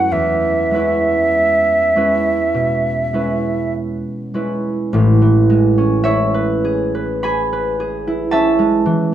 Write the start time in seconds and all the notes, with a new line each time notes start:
Already playing: F#2 G#3 A3 C#4 E4 F#4 B4 F#5
0.12 E2 E5
0.71 G#3 C#4 B4
0.76 E4
1.96 G#3 C#4 E4 B4
2.55 B2
3.13 G#3 C#4 E4 B4
4.34 G#3 C#4 E4 B4
4.93 A1 A2
5.22 E3
5.50 G#3
5.78 C#4
6.04 E4 C#5 E5
6.34 B4
6.65 G#4
6.95 B4
7.23 G#4 G#5 B5
7.53 B4
7.80 G#4
8.07 E4
8.31 C#4 E5 A5
8.59 G#3
8.86 E3